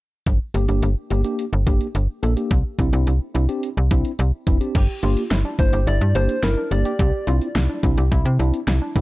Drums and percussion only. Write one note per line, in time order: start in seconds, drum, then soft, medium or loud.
0.27 kick medium
0.27 closed hi-hat medium
0.54 closed hi-hat medium
0.68 closed hi-hat soft
0.82 closed hi-hat medium
1.10 closed hi-hat medium
1.24 closed hi-hat soft
1.39 closed hi-hat medium
1.67 kick medium
1.67 closed hi-hat medium
1.81 closed hi-hat soft
1.95 closed hi-hat medium
2.23 closed hi-hat medium
2.37 closed hi-hat medium
2.51 kick loud
2.51 closed hi-hat medium
2.79 kick medium
2.79 closed hi-hat medium
2.93 closed hi-hat soft
3.07 closed hi-hat medium
3.35 closed hi-hat medium
3.49 closed hi-hat soft
3.63 closed hi-hat medium
3.91 kick medium
3.91 closed hi-hat medium
4.05 closed hi-hat soft
4.19 closed hi-hat medium
4.47 kick medium
4.47 closed hi-hat medium
4.61 closed hi-hat soft
4.75 kick loud
4.75 closed hi-hat medium
4.75 crash medium
5.03 closed hi-hat medium
5.17 closed hi-hat soft
5.31 snare loud
5.31 closed hi-hat medium
5.59 kick medium
5.59 closed hi-hat medium
5.73 closed hi-hat medium
5.87 closed hi-hat medium
6.15 closed hi-hat medium
6.29 closed hi-hat soft
6.43 snare loud
6.43 closed hi-hat medium
6.71 closed hi-hat medium
6.85 closed hi-hat medium
6.99 kick loud
6.99 closed hi-hat medium
7.27 closed hi-hat medium
7.41 closed hi-hat soft
7.56 snare loud
7.56 closed hi-hat medium
7.83 kick medium
7.83 closed hi-hat medium
7.97 closed hi-hat medium
8.12 kick medium
8.12 closed hi-hat medium
8.40 closed hi-hat medium
8.54 closed hi-hat soft
8.68 snare loud
8.68 closed hi-hat medium
8.96 kick medium
8.96 closed hi-hat medium